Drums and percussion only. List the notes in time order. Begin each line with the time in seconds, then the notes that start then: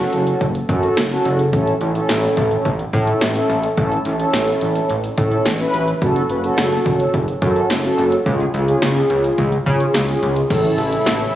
0.13 closed hi-hat
0.27 closed hi-hat
0.41 kick, closed hi-hat
0.55 closed hi-hat
0.69 kick, closed hi-hat
0.83 closed hi-hat
0.97 snare, closed hi-hat
1.11 closed hi-hat
1.25 closed hi-hat
1.39 closed hi-hat
1.53 kick, closed hi-hat
1.67 closed hi-hat
1.81 closed hi-hat
1.95 closed hi-hat
2.09 snare, closed hi-hat
2.23 closed hi-hat
2.37 kick, closed hi-hat
2.51 closed hi-hat
2.65 kick, closed hi-hat
2.79 closed hi-hat
2.93 kick, closed hi-hat
3.07 closed hi-hat
3.21 snare, closed hi-hat
3.35 closed hi-hat
3.50 closed hi-hat
3.63 closed hi-hat
3.77 kick, closed hi-hat
3.92 closed hi-hat
4.05 closed hi-hat
4.20 closed hi-hat
4.34 snare, closed hi-hat
4.48 closed hi-hat
4.61 closed hi-hat
4.75 closed hi-hat
4.90 closed hi-hat
5.04 closed hi-hat
5.18 kick, closed hi-hat
5.32 closed hi-hat
5.45 snare, closed hi-hat
5.60 closed hi-hat
5.74 closed hi-hat
5.88 closed hi-hat
6.02 kick, closed hi-hat
6.16 closed hi-hat
6.30 closed hi-hat
6.44 closed hi-hat
6.58 snare, closed hi-hat
6.72 closed hi-hat
6.86 kick, closed hi-hat
7.00 closed hi-hat
7.14 kick, closed hi-hat
7.28 closed hi-hat
7.42 kick, closed hi-hat
7.56 closed hi-hat
7.70 snare, closed hi-hat
7.84 closed hi-hat
7.98 closed hi-hat
8.12 closed hi-hat
8.26 kick, closed hi-hat
8.40 closed hi-hat
8.54 closed hi-hat
8.68 closed hi-hat
8.82 snare, closed hi-hat
8.96 closed hi-hat
9.10 closed hi-hat
9.24 closed hi-hat
9.38 kick, closed hi-hat
9.52 closed hi-hat
9.66 kick, closed hi-hat
9.80 closed hi-hat
9.94 snare, closed hi-hat
10.09 closed hi-hat
10.23 closed hi-hat
10.36 closed hi-hat
10.50 kick, closed hi-hat, crash
10.78 closed hi-hat
10.93 closed hi-hat
11.06 snare, closed hi-hat